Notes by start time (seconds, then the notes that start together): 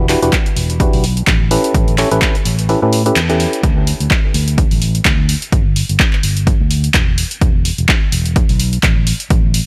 Already playing: E1
0.09 D4 E4 F#4 G4 B4, clap, open hi-hat
0.22 E1 D4 E4 F#4 G4 B4, closed hi-hat
0.33 kick, clap, closed hi-hat
0.46 closed hi-hat
0.56 E1, open hi-hat
0.70 closed hi-hat
0.80 D4 E4 F#4 G4 B4, kick, closed hi-hat
0.93 B1, open hi-hat
1.04 open hi-hat
1.17 closed hi-hat
1.27 A1, kick, clap, closed hi-hat
1.51 C#4 E4 G4 A4 B4, open hi-hat
1.64 closed hi-hat
1.74 A1, kick, closed hi-hat
1.88 closed hi-hat
1.98 C#4 E4 G4 A4 C#5, clap, open hi-hat
2.11 A1 C#4 E4 G4 A4 B4, closed hi-hat
2.22 kick, clap, closed hi-hat
2.35 closed hi-hat
2.45 A1, open hi-hat
2.59 closed hi-hat
2.69 C#4 E4 G4 A4 B4, open hi-hat
2.82 A2 C#4 E4 G4 A4 B4
2.93 open hi-hat
3.06 C#4 E4 G4 A4 B4, closed hi-hat
3.16 E2, clap, closed hi-hat
3.29 C#4 E4 G4 A4 B4, closed hi-hat
3.40 open hi-hat
3.53 closed hi-hat
3.63 D2, kick, closed hi-hat
3.87 open hi-hat
4.00 D2, closed hi-hat
4.11 kick, clap
4.34 D2, open hi-hat
4.48 closed hi-hat
4.58 kick, closed hi-hat
4.71 A1, open hi-hat
4.82 open hi-hat
4.95 closed hi-hat
5.05 D2, kick, clap, closed hi-hat
5.29 open hi-hat
5.42 closed hi-hat
5.52 G1, kick, closed hi-hat
5.76 open hi-hat
5.89 G1, closed hi-hat
6.00 kick, clap
6.13 clap
6.23 G1, open hi-hat
6.37 closed hi-hat
6.47 kick, closed hi-hat
6.60 D2
6.71 open hi-hat
6.84 closed hi-hat
6.94 E1, kick, clap, closed hi-hat
7.18 open hi-hat
7.31 closed hi-hat
7.41 E1, kick, closed hi-hat
7.65 open hi-hat
7.78 E1, closed hi-hat
7.89 kick, clap
8.12 E1, open hi-hat
8.26 closed hi-hat
8.36 kick, closed hi-hat
8.49 B1, open hi-hat
8.60 open hi-hat
8.73 closed hi-hat
8.83 A1, kick, clap, closed hi-hat
9.07 open hi-hat
9.20 closed hi-hat
9.30 A1, kick, closed hi-hat
9.54 open hi-hat